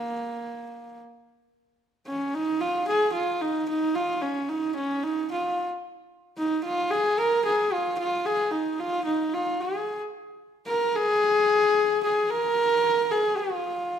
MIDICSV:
0, 0, Header, 1, 2, 480
1, 0, Start_track
1, 0, Tempo, 538117
1, 1366, Time_signature, 4, 2, 24, 8
1, 12483, End_track
2, 0, Start_track
2, 0, Title_t, "Horsehead fiddle"
2, 0, Program_c, 0, 110
2, 0, Note_on_c, 0, 58, 73
2, 888, Note_off_c, 0, 58, 0
2, 1844, Note_on_c, 0, 61, 78
2, 2090, Note_on_c, 0, 63, 94
2, 2104, Note_off_c, 0, 61, 0
2, 2323, Note_on_c, 0, 65, 87
2, 2337, Note_off_c, 0, 63, 0
2, 2565, Note_off_c, 0, 65, 0
2, 2570, Note_on_c, 0, 68, 86
2, 2787, Note_off_c, 0, 68, 0
2, 2793, Note_on_c, 0, 65, 82
2, 3043, Note_on_c, 0, 63, 86
2, 3057, Note_off_c, 0, 65, 0
2, 3285, Note_off_c, 0, 63, 0
2, 3295, Note_on_c, 0, 63, 90
2, 3529, Note_on_c, 0, 65, 84
2, 3542, Note_off_c, 0, 63, 0
2, 3763, Note_on_c, 0, 61, 73
2, 3776, Note_off_c, 0, 65, 0
2, 4007, Note_on_c, 0, 63, 79
2, 4020, Note_off_c, 0, 61, 0
2, 4238, Note_off_c, 0, 63, 0
2, 4244, Note_on_c, 0, 61, 78
2, 4495, Note_on_c, 0, 63, 85
2, 4508, Note_off_c, 0, 61, 0
2, 4731, Note_off_c, 0, 63, 0
2, 4740, Note_on_c, 0, 65, 65
2, 5068, Note_off_c, 0, 65, 0
2, 5687, Note_on_c, 0, 63, 81
2, 5909, Note_off_c, 0, 63, 0
2, 5922, Note_on_c, 0, 65, 89
2, 6162, Note_on_c, 0, 68, 96
2, 6175, Note_off_c, 0, 65, 0
2, 6412, Note_on_c, 0, 70, 95
2, 6425, Note_off_c, 0, 68, 0
2, 6643, Note_off_c, 0, 70, 0
2, 6649, Note_on_c, 0, 68, 83
2, 6893, Note_on_c, 0, 65, 85
2, 6906, Note_off_c, 0, 68, 0
2, 7118, Note_off_c, 0, 65, 0
2, 7123, Note_on_c, 0, 65, 90
2, 7363, Note_on_c, 0, 68, 90
2, 7376, Note_off_c, 0, 65, 0
2, 7594, Note_on_c, 0, 63, 77
2, 7607, Note_off_c, 0, 68, 0
2, 7846, Note_on_c, 0, 65, 90
2, 7859, Note_off_c, 0, 63, 0
2, 8069, Note_off_c, 0, 65, 0
2, 8074, Note_on_c, 0, 63, 78
2, 8328, Note_on_c, 0, 65, 82
2, 8341, Note_off_c, 0, 63, 0
2, 8570, Note_on_c, 0, 68, 70
2, 8584, Note_off_c, 0, 65, 0
2, 8928, Note_off_c, 0, 68, 0
2, 9521, Note_on_c, 0, 70, 92
2, 9771, Note_on_c, 0, 68, 112
2, 9784, Note_off_c, 0, 70, 0
2, 10729, Note_off_c, 0, 68, 0
2, 10738, Note_on_c, 0, 68, 88
2, 10976, Note_on_c, 0, 70, 105
2, 10989, Note_off_c, 0, 68, 0
2, 11696, Note_on_c, 0, 68, 91
2, 11709, Note_off_c, 0, 70, 0
2, 11928, Note_on_c, 0, 65, 77
2, 11941, Note_off_c, 0, 68, 0
2, 12483, Note_off_c, 0, 65, 0
2, 12483, End_track
0, 0, End_of_file